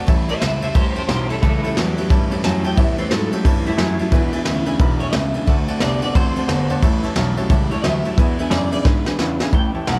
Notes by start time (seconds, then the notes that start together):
0.06 A1 A2 E3 G3 C#4 E4 C#5 E5 A5, kick, ride
0.27 A1 G3 C#4 E4 C5 C#5 E5 A5, ride
0.41 C#2 E3 G3 C#4 E4 C5 C#5 E5 A5, snare, ride
0.61 C#2 G3 C#4 E4 C5 C#5 E5 A5, ride
0.74 A1 A2 E3 G3 C#4 E4 G4 C5 C#5 E5 A5, kick, ride
0.95 A1 G3 C#4 E4 G4 C5 C#5 E5 A5, ride
1.09 B1 E3 G3 C#4 G4 C5 C#5 E5 A5, snare, ride
1.13 E4
1.29 B1 G3 C#4 E4 A4 C#5 E5 A5, ride
1.42 C#2 A2 E3 G3 C#4 E4 A4 C#5 E5 A5, kick, ride
1.63 C#2 A2 E3 G3 C#4 E4 A4 C#5 E5 A5, ride
1.75 E2 A2 E3 F#3 G3 C#4 E4 G4 C#5 E5 A5, snare, ride
1.97 E2 A2 F#3 G3 C#4 E4 C#5 E5 A5, ride
2.09 G2 A2 E3 G3 C#4 E4 C#5 E5 A5, kick, ride
2.29 G2 A2 G3 C#4 E4 C#5 E5 A5, ride
2.41 F#2 A2 E3 F#3 G3 C#4 E4 C#5 E5 A5, snare, ride
2.63 F#2 A2 F#3 G3 C#4 E4 C#5 E5 G5 A5, ride
2.76 E2 A2 E3 G3 C#4 E4 C#5 E5 A5, kick, ride
2.97 E2 A2 E3 G3 C#4 E4 C5 C#5 E5 B5, ride
3.10 G#2 A2 E3 F#3 G3 C#4 E4 A4 C#5 E5 A5, snare, ride
3.31 G#2 A2 F#3 G3 C#4 E4 G4 C#5 E5 A5, ride
3.44 G2 A2 E3 G3 C#4 E4 C#5 E5 A5, kick, ride
3.65 G2 A2 G3 C#4 E4 C#5 E5 A5, ride
3.77 F#2 A2 E3 F#3 G3 C#4 C#5 E5 A5, snare, ride
3.82 E4
3.98 F#2 A2 F#3 C#4 E4 C#5 E5 A5, ride
4.03 G3
4.12 E2 B2 E3 G#3 E4 B4 E5 G#5, kick, ride
4.16 D4
4.32 E2 B2 E3 G#3 D4 E4 B4 E5 G#5, ride
4.45 D2 E2 C#3 E3 G#3 D4 E4 B4 E5 G#5, snare, ride
4.65 D2 E2 C#3 E3 G#3 D4 E4 B4 E5 G#5, ride
4.79 B1 E2 B2 D3 E3 G#3 D4 E4 B4 E5 B5, kick, ride
4.99 B1 E2 D3 E3 G#3 D4 E4 B4 C#5 E5 G#5, ride
5.13 C#2 E2 C#3 E3 G#3 D4 E4 B4 E5 G#5, snare, ride
5.34 C#2 E2 C#3 E3 G#3 D4 E4 B4 E5 G#5, ride
5.46 D2 D3 A3 C4 F#4 D5 F#5 A5, kick, ride
5.68 D2 D3 A3 C4 F#4 D5 F#5 A5, ride
5.80 C2 D3 A3 B3 C4 F#4 D5 F#5 A5, snare, ride
6.01 C2 D3 A3 B3 C4 F#4 D5 F#5 A5, ride
6.15 A1 D3 A3 C4 F#4 C5 D5 F#5 A5, kick, ride
6.36 A1 D3 A3 C4 F#4 D5 F#5 A5, ride
6.48 G1 D3 A3 B3 C4 F#4 D5 F#5 A5, snare, ride
6.69 G1 D3 A3 B3 C4 F#4 D5 F#5 A5, ride
6.82 A1 A2 E3 G3 C#4 E4 C#5 E5 A5, kick, ride
7.03 A1 A2 E3 G3 C#4 E4 C#5 E5 A5, ride
7.15 B1 A2 E3 F#3 G3 C#4 E4 C#5 E5 A5, snare, ride
7.36 B1 A2 F#3 G3 C#4 E4 C#5 E5 A5, ride
7.49 C#2 A2 E3 G3 C#4 C#5 E5 A5, kick, ride
7.54 E4
7.71 C#2 A2 G3 C#4 E4 C#5 E5 A5, ride
7.84 D2 A2 E3 F#3 G3 C#4 E4 C#5 E5 A5, snare, ride
8.04 D2 A2 F#3 C#4 E4 C#5 E5 A5, ride
8.08 G3
8.17 E2 B2 E3 G#3 D4 E4 B4 E5 G#5, kick, ride
8.38 E2 B2 E3 G#3 D4 E4 B4 E5 G#5, ride
8.50 E2 F#2 C#3 E3 G#3 D4 B4 D5 E5 G#5, snare, ride
8.55 E4
8.71 E2 F#2 C#3 E3 G#3 D4 E4 B4 D5 E5 G#5, ride
8.84 E2 G#2 B2 D3 E3 G#3 D4 E4 B4 E5 G#5, kick, snare
9.05 E2 G#2 D3 E3 G#3 D4 E4 B4 E5 G#5, snare
9.19 E2 C#3 E3 G#3 D4 E4 B4 E5 G#5, snare
9.39 E2 C#3 E3 G#3 D4 E4 B4 E5 G#5, snare
9.51 A1 A2 E3 G3 C#4 E4 C#5 E5 G5 A5, kick, closed hi-hat
9.72 A1 A2 E3 C#4 E4 C#5 E5 A5
9.76 G3
9.85 B1 A2 E3 F#3 G3 C#4 E4 C#5 E5 F#5 A5, snare, closed hi-hat